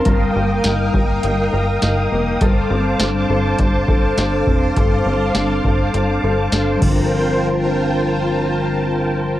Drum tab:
CC |--------|--------|-------x|--------|
HH |x-x-x-x-|x-x-x-x-|x-x-x-x-|--------|
SD |--o---o-|--o---o-|--o---o-|--------|
BD |o--o----|o---oo-o|o--o---o|--------|